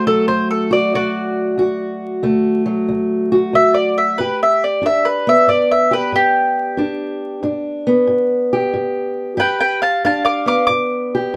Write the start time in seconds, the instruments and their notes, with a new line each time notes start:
Already playing: steel-string acoustic guitar D2 A3 F#4
0.07 steel-string acoustic guitar F#3, mandolin A4
0.28 steel-string acoustic guitar D2, mandolin C5
0.51 mandolin A4
0.71 steel-string acoustic guitar F#4, mandolin D5
0.94 steel-string acoustic guitar D2, mandolin F#4 D5
1.58 steel-string acoustic guitar D2 F#4
2.23 steel-string acoustic guitar D2 A3
2.66 steel-string acoustic guitar F#3
2.88 steel-string acoustic guitar D2
3.32 steel-string acoustic guitar F#4
3.53 steel-string acoustic guitar D2, mandolin E5
3.74 mandolin D5
3.98 mandolin E5
4.18 steel-string acoustic guitar G2 G4, mandolin B4
4.43 mandolin E5
4.64 mandolin D5
4.82 steel-string acoustic guitar G2 D4
4.86 mandolin E5
5.05 mandolin B4
5.27 steel-string acoustic guitar B3, mandolin E5
5.48 steel-string acoustic guitar G2, mandolin D5
5.71 mandolin E5
5.91 steel-string acoustic guitar G4, mandolin B4
6.12 steel-string acoustic guitar G2, mandolin G4
6.77 steel-string acoustic guitar G2 D4
7.43 steel-string acoustic guitar G2 D4
7.87 steel-string acoustic guitar B3
8.07 steel-string acoustic guitar G2
8.53 steel-string acoustic guitar G4
8.74 steel-string acoustic guitar G2
9.37 steel-string acoustic guitar G2 G4, mandolin B4 G5
9.60 mandolin B4 G5
9.82 mandolin F5 A5
10.04 steel-string acoustic guitar G2 D4, mandolin F5 A5
10.25 mandolin F5 D6
10.46 steel-string acoustic guitar B3, mandolin F5 D6
10.67 steel-string acoustic guitar G2, mandolin D6
11.15 steel-string acoustic guitar G4